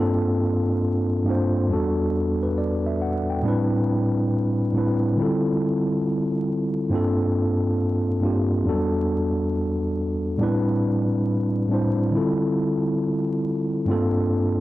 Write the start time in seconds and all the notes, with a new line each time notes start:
Already playing: G2 A#3 C4 D4
0.00 F4 A4
1.24 G2 A#3 C4 D4
1.29 F4 C5
1.68 E2 G3 B3 D4
1.72 F#4 A4
2.43 B4
2.58 D5
2.86 E5
3.02 F#5
3.30 G5
3.42 A2 G3 C4 D4
3.47 E4 B4
4.73 A2 G3 C4 D4
4.77 E4 B4
5.16 D3 G3 C4 E4
5.21 F4 A4
6.90 G2 A#3 C4 D4
6.94 F4 A4
8.20 G2 A#3 C4 D4
8.25 F4 G4
8.63 E2 F#3 B3 D4
8.68 G3 F#4 A4
10.38 A2 G3 B3 D4
10.42 C4 E4 B4
11.68 A2 G3 C4 D4
11.73 E4 C5
12.11 D3 G3 C4 E4
12.16 F4 A4
13.85 G2 A3 C4 D4
13.90 A#3 F4 A4